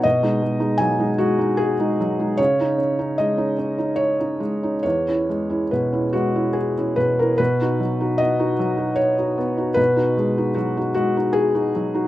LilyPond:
\new Staff \with { instrumentName = "Felt piano" } { \time 3/4 \key b \major \tempo 4 = 75 << { dis''4 gis''8 fis'8 gis'4 | cis''4 dis''4 cis''4 | cis''4 b'8 fis'8 gis'8 b'16 ais'16 | b'4 dis''4 cis''4 |
b'4 fis'8 fis'8 gis'4 | } \\ { b,16 <gis dis'>16 gis16 <gis dis'>16 fis16 <gis dis'>16 gis16 <gis dis'>8 <gis dis'>16 fis16 <gis dis'>16 | cis16 <cis' dis'>16 cis'16 <cis' dis'>16 gis16 <cis' dis'>16 cis'16 <cis' dis'>8 <cis' dis'>16 gis16 <cis' dis'>16 | e,16 <cis' e'>16 gis16 <cis' e'>16 b,16 <cis' e'>16 gis16 <cis' e'>8 <cis' e'>16 b,16 <cis' e'>16 | b,16 <dis' fis'>16 fis16 <dis' fis'>16 b16 <dis' fis'>16 fis16 <dis' fis'>8 <dis' fis'>16 b16 <dis' fis'>16 |
b,16 <dis' fis'>16 gis16 <dis' fis'>16 fis16 <dis' fis'>16 gis16 <dis' fis'>8 <dis' fis'>16 fis16 <dis' fis'>16 | } >> }